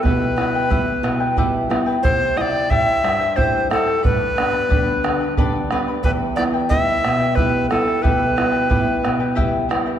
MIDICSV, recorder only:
0, 0, Header, 1, 2, 480
1, 0, Start_track
1, 0, Key_signature, 1, "minor"
1, 0, Tempo, 665927
1, 35, Time_signature, 6, 3, 24, 8
1, 7202, End_track
2, 0, Start_track
2, 0, Title_t, "Recorder"
2, 0, Program_c, 0, 74
2, 17, Note_on_c, 0, 71, 70
2, 986, Note_off_c, 0, 71, 0
2, 1462, Note_on_c, 0, 72, 81
2, 1709, Note_on_c, 0, 75, 77
2, 1720, Note_off_c, 0, 72, 0
2, 1739, Note_on_c, 0, 74, 83
2, 1746, Note_off_c, 0, 75, 0
2, 1947, Note_on_c, 0, 76, 99
2, 1958, Note_off_c, 0, 74, 0
2, 2423, Note_on_c, 0, 72, 79
2, 2434, Note_off_c, 0, 76, 0
2, 2669, Note_off_c, 0, 72, 0
2, 2676, Note_on_c, 0, 69, 63
2, 2898, Note_off_c, 0, 69, 0
2, 2919, Note_on_c, 0, 71, 77
2, 3847, Note_off_c, 0, 71, 0
2, 4348, Note_on_c, 0, 71, 75
2, 4403, Note_off_c, 0, 71, 0
2, 4583, Note_on_c, 0, 74, 81
2, 4638, Note_off_c, 0, 74, 0
2, 4823, Note_on_c, 0, 76, 92
2, 5301, Note_on_c, 0, 71, 78
2, 5312, Note_off_c, 0, 76, 0
2, 5547, Note_off_c, 0, 71, 0
2, 5550, Note_on_c, 0, 69, 67
2, 5783, Note_on_c, 0, 71, 72
2, 5793, Note_off_c, 0, 69, 0
2, 6747, Note_off_c, 0, 71, 0
2, 7202, End_track
0, 0, End_of_file